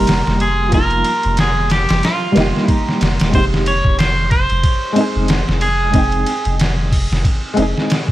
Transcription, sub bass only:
Already playing: F1
0.27 F1
1.25 F1
1.90 F1
2.36 F1
3.01 F1
3.20 D#1
3.34 F1
3.85 F1
4.51 F1
5.16 F1
5.48 F1
6.46 F1
7.11 F1
7.57 F1

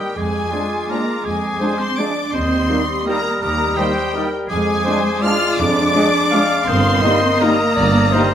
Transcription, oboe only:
0.00 G4
0.17 G#4
0.90 A#4
1.25 G#4
1.79 C5
1.98 D5
2.34 C5
3.06 A#4
3.42 A#4
3.77 G4
4.48 G#4
5.23 F5
5.58 D5
6.67 C5
7.41 A#4

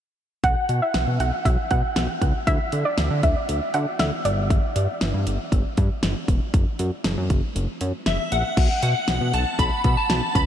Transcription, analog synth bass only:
0.44 B1
0.69 B2
0.95 B1
1.07 B2
1.20 B1
1.45 B1
1.71 B2
1.96 B1
2.22 C#2
2.47 D2
2.73 D3
2.98 D2
3.11 D3
3.23 D2
3.49 D2
3.74 D3
4.00 D2
4.25 G1
4.76 G2
5.01 G1
5.14 G2
5.27 G1
5.52 G1
5.78 G2
6.03 G1
6.28 E1
6.54 F#1
6.79 F#2
7.05 F#1
7.17 F#2
7.30 F#1
7.56 F#1
7.81 F#2
8.06 F#1
8.32 A#1
8.57 B1
8.83 B2
9.08 B1
9.21 B2
9.34 B1
9.59 B1
9.85 B2
10.10 B1
10.35 C#2

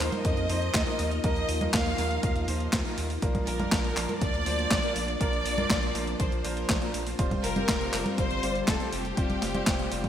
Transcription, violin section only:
Already playing: C5
0.25 D#5
1.24 D#5
1.74 F5
3.47 A#4
4.22 D5
5.21 D5
6.20 C5
6.45 A#4
7.44 A#4
8.18 C5
8.68 A4
8.93 G4

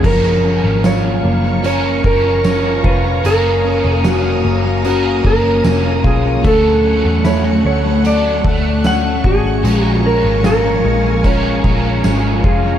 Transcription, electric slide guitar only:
0.06 A#4
0.86 C#5
1.66 C#5
2.06 A#4
2.86 B4
3.26 A#4
4.06 F#4
4.86 F#4
5.26 A#4
6.07 G#4
6.47 A4
7.27 C#5
7.66 C#5
8.07 D5
8.87 F#5
9.26 G#4
9.85 F#4
10.06 A#4
10.46 A#4
11.26 C#5
12.46 G#4

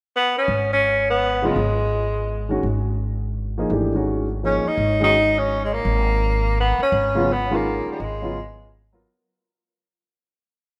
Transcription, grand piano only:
1.42 C#3 F#3 B3 F4
2.49 D#3 G#3 C#4 F#4
3.58 F3 A#3 D#4 G#4
3.71 E3 A3 D4 G4
3.93 D#3 G#3 C#4 F#4
4.43 F3 A#3 D#4 G#4
5.00 D#3 G#3 C#4 F#4
7.15 C#3 F#3 B3 F4
7.50 D#3 G#3 C#4 F4
8.22 C#3 F#3 B3 F4
8.93 F#3 B3 F4 A#4

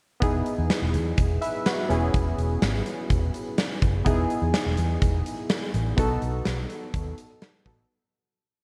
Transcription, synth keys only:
0.20 B3 D#4 E4 G#4
1.42 B4 E5
1.66 F#4 B4
1.89 B3 C#4 E4 G#4
4.05 B3 D#4 E4 G#4
5.97 B3 D#4 F#4 A4
7.65 B3 D#4 F#4 A4

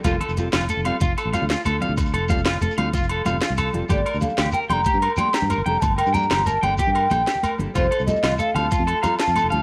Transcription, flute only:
3.90 D5
4.21 F5
4.53 G5
4.69 A#5 C6
5.17 C6
5.34 A#5
5.66 A#5
5.81 A5
5.98 G5
6.14 A#5
6.47 A5
6.64 G5
6.79 G5
7.75 C5
8.06 D#5
8.39 F5
8.55 A5
9.03 A#5
9.20 A5
9.51 A5

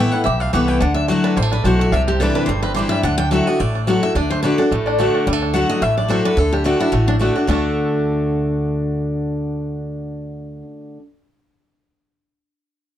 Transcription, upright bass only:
0.26 B1
0.54 C2
0.81 D2
1.37 A1
1.64 B1
1.92 C2
2.48 G1
3.03 D2
3.60 A1
4.15 D2
4.71 A1
5.27 D2
5.82 A1
6.37 D2
6.92 A1
7.48 D2

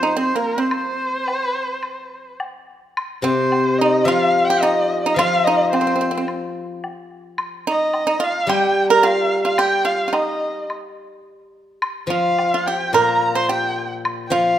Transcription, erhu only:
Already playing: C5
0.18 C5
0.35 A#4
0.60 C5
3.24 C5
3.78 D#5
4.05 F5
4.45 G5
4.61 D#5
5.02 D#5
5.14 F5
5.44 D#5
5.72 C5
7.70 D#5
8.24 F5
8.49 G5
8.90 A#5
9.04 F5
9.43 F5
9.58 G5
9.85 F5
10.13 D#5
12.08 F5
12.66 G5
12.94 A#5
13.36 C6
13.51 G5
14.27 G5
14.33 F5

